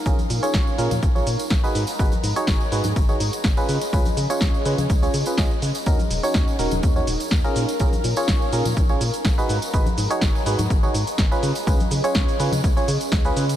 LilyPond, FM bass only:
\new Staff \with { instrumentName = "FM bass" } { \clef bass \time 4/4 \key des \mixolydian \tempo 4 = 124 bes,,16 r16 bes,16 r16 bes,,16 r16 bes,16 bes,16 bes,,8 bes,16 r16 bes,,16 r16 aes,16 r16 | aes,,16 r16 aes,16 r16 aes,,16 r16 aes,16 aes,16 aes,,8 aes,16 r16 aes,,16 r16 des16 r16 | des,16 r16 des16 r16 des,16 r16 des16 des16 des,8 des16 r16 des,16 r16 des16 r16 | ees,16 r16 ees,,16 r16 ees,16 r16 ees,,16 ees,,16 ees,8 ees,,16 r16 ees,16 r16 bes,16 r16 |
bes,,16 r16 bes,16 r16 bes,,16 r16 bes,16 bes,16 bes,,8 bes,16 r16 bes,,16 r16 aes,16 r16 | aes,,16 r16 aes,16 r16 aes,,16 r16 aes,16 aes,16 aes,,8 aes,16 r16 aes,,16 r16 des16 r16 | des,16 r16 des16 r16 des,16 r16 des16 des16 des,16 r16 des16 r16 des,8 des8 | }